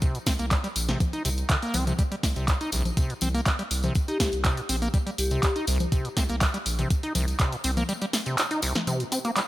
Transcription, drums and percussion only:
0.02 kick, closed hi-hat, tambourine
0.15 closed hi-hat, tambourine
0.26 kick, snare, open hi-hat, tambourine
0.39 closed hi-hat, tambourine
0.51 kick, clap, closed hi-hat, tambourine
0.64 closed hi-hat, tambourine
0.76 open hi-hat, tambourine
0.89 snare, closed hi-hat, low conga
1.00 kick, closed hi-hat, tambourine, low conga
1.13 closed hi-hat, tambourine
1.25 open hi-hat, tambourine
1.38 closed hi-hat, tambourine
1.49 kick, clap, closed hi-hat, tambourine
1.62 closed hi-hat, tambourine
1.74 open hi-hat, tambourine, low conga
1.87 closed hi-hat, tambourine, low conga
1.98 kick, closed hi-hat, tambourine
2.11 closed hi-hat, tambourine
2.23 kick, snare, open hi-hat, tambourine
2.36 closed hi-hat, tambourine
2.48 kick, clap, closed hi-hat, tambourine
2.61 closed hi-hat, tambourine
2.72 open hi-hat, tambourine
2.85 closed hi-hat, tambourine, low conga
2.97 kick, closed hi-hat, tambourine
3.10 closed hi-hat, tambourine
3.21 open hi-hat, tambourine, low conga
3.35 closed hi-hat, tambourine
3.46 kick, clap, closed hi-hat, tambourine
3.59 closed hi-hat, tambourine
3.71 open hi-hat, tambourine
3.83 closed hi-hat, tambourine, low conga
3.95 kick, closed hi-hat, tambourine
4.08 closed hi-hat, tambourine
4.20 kick, snare, open hi-hat, tambourine
4.32 closed hi-hat, tambourine
4.45 kick, clap, closed hi-hat, tambourine
4.57 closed hi-hat, tambourine
4.69 open hi-hat, tambourine
4.82 closed hi-hat, tambourine
4.94 kick, closed hi-hat, tambourine
5.07 closed hi-hat, tambourine
5.18 open hi-hat, tambourine
5.31 closed hi-hat, tambourine
5.43 kick, clap, closed hi-hat, tambourine
5.56 closed hi-hat, tambourine
5.67 open hi-hat, tambourine
5.80 closed hi-hat, tambourine, low conga
5.92 kick, closed hi-hat, tambourine
6.05 closed hi-hat, tambourine
6.17 kick, snare, open hi-hat, tambourine
6.29 closed hi-hat, tambourine
6.41 kick, clap, closed hi-hat, tambourine
6.54 closed hi-hat, tambourine
6.66 open hi-hat, tambourine
6.79 closed hi-hat, tambourine, low conga
6.90 kick, closed hi-hat, tambourine
7.03 closed hi-hat, tambourine
7.15 open hi-hat, tambourine, low conga
7.28 closed hi-hat, tambourine
7.39 kick, clap, closed hi-hat, tambourine
7.52 closed hi-hat, tambourine
7.64 open hi-hat, tambourine
7.77 closed hi-hat, tambourine, low conga
7.89 closed hi-hat, tambourine
8.01 closed hi-hat, tambourine
8.13 snare, open hi-hat, tambourine
8.26 closed hi-hat, tambourine
8.38 clap, closed hi-hat, tambourine
8.51 closed hi-hat, tambourine
8.62 open hi-hat, tambourine
8.75 snare, closed hi-hat, tambourine, low conga
8.87 closed hi-hat, tambourine, low conga
9.00 closed hi-hat, tambourine
9.12 open hi-hat, tambourine
9.25 closed hi-hat, tambourine
9.36 clap, closed hi-hat, tambourine

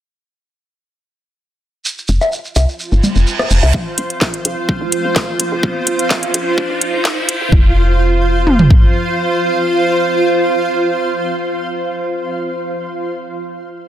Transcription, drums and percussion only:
1.85 shekere
1.98 shekere
2.08 shekere
2.21 low woodblock, shekere
2.32 shekere
2.45 shekere
2.56 low woodblock, shekere
2.69 shekere
2.79 shekere
2.92 shekere
3.03 low conga, shekere
3.16 shekere
3.27 shekere
3.39 cross-stick, low woodblock, shekere
3.50 shekere
3.63 low woodblock, shekere
3.74 kick
3.98 closed hi-hat
4.10 closed hi-hat
4.21 kick, snare
4.34 closed hi-hat
4.45 closed hi-hat
4.69 kick
4.92 closed hi-hat
5.16 kick, snare
5.40 closed hi-hat
5.63 kick
5.87 closed hi-hat
5.99 closed hi-hat
6.10 kick, snare
6.23 closed hi-hat
6.34 closed hi-hat
6.58 kick
6.81 closed hi-hat
7.05 kick, snare
7.29 closed hi-hat
7.52 kick
8.47 mid tom
8.59 floor tom
8.70 kick

